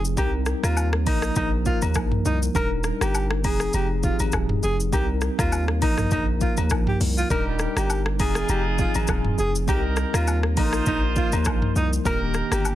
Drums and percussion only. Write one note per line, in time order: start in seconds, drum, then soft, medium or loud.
0.05 shaker medium
0.17 kick loud
0.17 high agogo medium
0.17 shaker medium
0.46 cross-stick medium
0.46 shaker soft
0.64 cross-stick medium
0.64 high agogo medium
0.64 shaker medium
0.77 low woodblock medium
0.77 shaker medium
0.93 cross-stick loud
1.07 kick medium
1.07 open hi-hat medium
1.07 high agogo medium
1.07 shaker soft
1.22 cross-stick loud
1.22 shaker medium
1.36 kick medium
1.36 high agogo medium
1.36 shaker medium
1.66 kick medium
1.66 shaker medium
1.82 high agogo medium
1.82 shaker medium
1.94 kick medium
1.94 cross-stick loud
1.94 low woodblock medium
1.94 shaker medium
2.12 mid tom loud
2.25 shaker medium
2.43 shaker medium
2.55 kick loud
2.55 high agogo medium
2.55 shaker medium
2.84 cross-stick medium
2.84 shaker soft
3.01 cross-stick loud
3.01 high agogo medium
3.01 shaker medium
3.15 low woodblock medium
3.15 shaker medium
3.31 cross-stick loud
3.44 kick loud
3.44 open hi-hat medium
3.44 high agogo medium
3.44 shaker soft
3.60 cross-stick medium
3.60 shaker medium
3.73 high agogo medium
3.73 shaker medium
4.03 kick medium
4.03 shaker soft
4.19 high agogo medium
4.19 shaker medium
4.32 kick medium
4.32 cross-stick loud
4.32 low woodblock medium
4.32 shaker medium
4.49 mid tom loud
4.63 shaker medium
4.80 shaker medium
4.93 kick loud
4.93 high agogo medium
4.93 shaker medium
5.21 cross-stick medium
5.21 shaker soft
5.39 kick loud
5.39 cross-stick loud
5.39 high agogo medium
5.39 shaker medium
5.52 low woodblock medium
5.52 shaker medium
5.68 cross-stick medium
5.82 kick loud
5.82 open hi-hat medium
5.82 high agogo medium
5.82 shaker medium
5.98 cross-stick medium
5.98 mid tom loud
5.98 shaker medium
6.11 kick medium
6.11 high agogo medium
6.11 shaker medium
6.41 kick medium
6.41 shaker soft
6.57 high agogo medium
6.57 shaker medium
6.70 kick medium
6.70 cross-stick loud
6.70 low woodblock medium
6.70 shaker medium
6.87 mid tom loud
7.01 open hi-hat medium
7.01 shaker medium
7.18 shaker medium
7.30 kick loud
7.30 high agogo medium
7.30 shaker medium
7.59 cross-stick medium
7.59 shaker soft
7.77 cross-stick loud
7.77 high agogo medium
7.77 shaker medium
7.90 low woodblock medium
7.90 shaker medium
8.06 cross-stick loud
8.20 kick medium
8.20 open hi-hat medium
8.20 high agogo medium
8.20 shaker soft
8.35 cross-stick loud
8.35 shaker medium
8.49 high agogo medium
8.49 shaker medium
8.78 kick loud
8.78 shaker medium
8.95 high agogo medium
8.95 shaker medium
9.07 kick medium
9.07 cross-stick loud
9.07 low woodblock medium
9.07 shaker medium
9.25 mid tom medium
9.38 shaker medium
9.55 shaker medium
9.68 kick loud
9.68 high agogo medium
9.68 shaker medium
9.96 cross-stick medium
9.96 shaker soft
10.14 cross-stick loud
10.14 high agogo medium
10.14 shaker medium
10.27 low woodblock medium
10.27 shaker medium
10.43 cross-stick medium
10.57 kick loud
10.57 open hi-hat medium
10.57 high agogo medium
10.57 shaker soft
10.73 cross-stick loud
10.73 shaker medium
10.86 kick medium
10.86 high agogo medium
10.86 shaker medium
11.16 kick medium
11.16 shaker soft
11.32 high agogo medium
11.32 shaker medium
11.45 kick medium
11.45 cross-stick loud
11.45 low woodblock medium
11.45 shaker medium
11.62 mid tom medium
11.76 shaker medium
11.93 shaker medium
12.05 kick loud
12.05 high agogo medium
12.05 shaker medium
12.34 cross-stick medium
12.34 shaker soft
12.52 cross-stick loud
12.52 high agogo medium
12.52 shaker medium
12.65 low woodblock medium
12.65 shaker medium